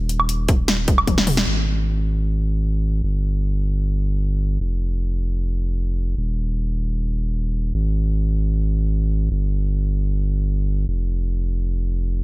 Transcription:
Already playing: sub bass D#1
0.09 closed hi-hat
0.20 high woodblock
0.29 closed hi-hat
0.48 kick, closed hi-hat
0.68 snare, closed hi-hat
0.88 kick, closed hi-hat
0.98 high woodblock
1.07 kick, closed hi-hat, high tom
1.18 snare
1.27 open hi-hat, mid tom
1.37 snare
1.47 sub bass G#1
3.03 sub bass G1
4.60 sub bass F1
6.17 sub bass D#1
7.74 sub bass G#1
9.31 sub bass G1
10.88 sub bass F1

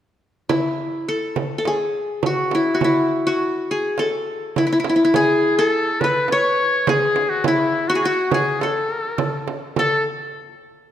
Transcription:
0.49 qanun E4, frame drum
1.09 qanun A4
1.36 frame drum
1.58 qanun A4
1.65 qanun G#4, frame drum
2.23 qanun F#4, frame drum
2.51 qanun E4, frame drum
2.74 qanun F#4
2.81 qanun E4, frame drum
3.27 qanun F#4
3.71 qanun G#4
3.98 qanun A4, frame drum
4.56 qanun E4, frame drum
4.67 qanun E4
4.73 qanun E4
4.80 qanun E4
4.84 frame drum
4.89 qanun E4
4.96 qanun E4
5.05 qanun E4
5.14 muted trumpet G#4, qanun G#4, frame drum
5.57 muted trumpet G#4, qanun A4
5.68 muted trumpet A4
6.01 muted trumpet B4, qanun B4, frame drum
6.28 muted trumpet C#5, frame drum
6.32 qanun C#5
6.87 qanun G#4, muted trumpet G#4, frame drum
7.16 frame drum
7.30 muted trumpet F#4
7.44 muted trumpet E4, qanun E4, frame drum
7.88 muted trumpet F#4, qanun F#4
7.95 qanun G#4
8.01 muted trumpet F#4
8.05 qanun F#4
8.31 muted trumpet G#4, qanun G#4, frame drum
8.61 muted trumpet A4, qanun A4, frame drum
9.18 frame drum
9.48 frame drum
9.76 muted trumpet A4, qanun A4, frame drum

